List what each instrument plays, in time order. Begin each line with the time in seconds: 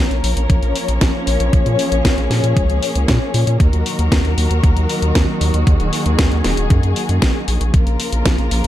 Already playing: string section F3 A#3 C#4 A#4 C#5
0.11 analog synth bass A#1, closed hi-hat
0.24 analog synth bass A#1, open hi-hat
0.37 analog synth bass A#1, closed hi-hat
0.50 analog synth bass A#1, kick, closed hi-hat
0.63 analog synth bass A#1, closed hi-hat
0.76 open hi-hat
0.88 analog synth bass A#1, closed hi-hat
1.01 analog synth bass A#1, kick, snare, closed hi-hat
1.27 analog synth bass A#1, open hi-hat
1.40 analog synth bass A#1, closed hi-hat
1.53 analog synth bass A#1, string section G#4, kick, closed hi-hat
1.66 analog synth bass A#2, closed hi-hat
1.79 open hi-hat
1.92 analog synth bass A#1, closed hi-hat
2.05 analog synth bass A#1, kick, snare, closed hi-hat
2.18 analog synth bass A#1, closed hi-hat
2.30 analog synth bass A#2, snare, open hi-hat
2.43 analog synth bass A#2, closed hi-hat
2.57 analog synth bass C#2, kick, closed hi-hat
2.70 analog synth bass C#2, closed hi-hat
2.83 open hi-hat
2.95 analog synth bass C#2, closed hi-hat
3.08 analog synth bass A#2, kick, snare, closed hi-hat
3.34 analog synth bass A#2, open hi-hat
3.47 analog synth bass A#2, closed hi-hat
3.60 analog synth bass D#2, string section D#3 F#3 F#4 A#4, kick, closed hi-hat
3.73 analog synth bass D#2, closed hi-hat
3.86 open hi-hat
3.99 analog synth bass D#2, closed hi-hat
4.12 analog synth bass D#2, kick, snare, closed hi-hat
4.25 analog synth bass D#2, closed hi-hat
4.38 analog synth bass D#2, open hi-hat
4.51 analog synth bass D#2, closed hi-hat
4.64 analog synth bass D#2, kick, closed hi-hat
4.76 analog synth bass D#2, closed hi-hat
4.89 open hi-hat
5.02 analog synth bass D#2, closed hi-hat
5.15 analog synth bass D#2, kick, snare, closed hi-hat
5.41 analog synth bass D#2, open hi-hat
5.54 analog synth bass D#2, closed hi-hat
5.67 analog synth bass D#2, string section G#4, kick, closed hi-hat
5.80 analog synth bass D#1, closed hi-hat
5.93 open hi-hat
6.06 analog synth bass D#2, closed hi-hat
6.19 analog synth bass D#2, kick, snare, closed hi-hat
6.32 analog synth bass D#2, closed hi-hat
6.44 analog synth bass D#1, snare, open hi-hat
6.57 analog synth bass D#1, closed hi-hat
6.70 analog synth bass F#2, kick, closed hi-hat
6.83 analog synth bass F#2, closed hi-hat
6.96 open hi-hat
7.09 analog synth bass F#2, closed hi-hat
7.22 analog synth bass A#1, kick, snare, closed hi-hat
7.48 analog synth bass A#1, open hi-hat
7.61 analog synth bass A#1, closed hi-hat
7.74 analog synth bass A#1, string section C#3 F3 A#3 F4 A#4, kick, closed hi-hat
7.87 analog synth bass A#1, closed hi-hat
8.00 open hi-hat
8.13 analog synth bass A#1, closed hi-hat
8.26 analog synth bass A#1, kick, snare, closed hi-hat
8.38 analog synth bass A#1, closed hi-hat
8.51 analog synth bass A#1, open hi-hat